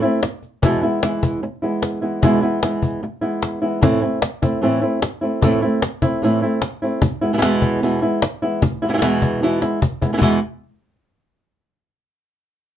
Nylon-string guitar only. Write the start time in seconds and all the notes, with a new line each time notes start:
0.02 A3 C4 E4
0.22 muted nylon-string guitar stroke
0.62 E2 B2 E3 G#3 B3 E4
0.83 E3 G#3 B3 E4
1.02 E3 G#3 B3 E4
1.43 muted nylon-string guitar stroke
1.62 E3 G#3 B3 E4
2.02 E3 G#3 B3 E4
2.22 E2 B2 E3 G#3 B3 E4
2.42 E3 G#3 B3 E4
2.63 E3 G#3 B3 E4
3.03 muted nylon-string guitar stroke
3.21 E3 G#3 B3 E4
3.62 E3 G#3 B3 E4
3.81 A2 E3 A3 C4 E4
4.02 A3 C4 E4
4.22 muted nylon-string guitar stroke
4.42 A3 C4 E4
4.62 A2 E3 A3 C4 E4
4.81 A3 C4 E4
5.02 muted nylon-string guitar stroke
5.21 A3 C4 E4
5.42 A2 E3 A3 C4 E4
5.62 A3 C4 E4
5.82 muted nylon-string guitar stroke
6.02 A3 C4 E4
6.22 A2 E3 A3 C4 E4
6.42 A3 C4 E4
6.62 muted nylon-string guitar stroke
6.82 A3 C4 E4
7.02 muted nylon-string guitar stroke
7.21 E3 G#3 B3 E4
7.33 B2 E3 G#3 B3 E4
7.38 B2 E3 G#3 B3 E4
7.42 E2 B2 E3 G#3 B3 E4
7.82 E2 B2 E3 G#3 B3 E4
8.02 E3 G#3 B3 E4
8.23 muted nylon-string guitar stroke
8.42 E3 G#3 B3 E4
8.63 muted nylon-string guitar stroke
8.82 E3 G#3 B3 E4
8.88 B2 E3 G#3 B3 E4
8.93 B2 E3 G#3 B3 E4
8.98 B2 E3 G#3 B3 E4
9.02 E2 B2 E3 G#3 B3 E4
9.42 E2 B2 E3 G#3 B3 E4
9.62 E3 G#3 B3 E4
9.82 muted nylon-string guitar stroke
10.02 E3 G#3 B3 E4
10.13 B2 E3 G#3 B3 E4
10.17 B2 E3 G#3 B3 E4
10.22 E2 B2 E3 G#3 B3 E4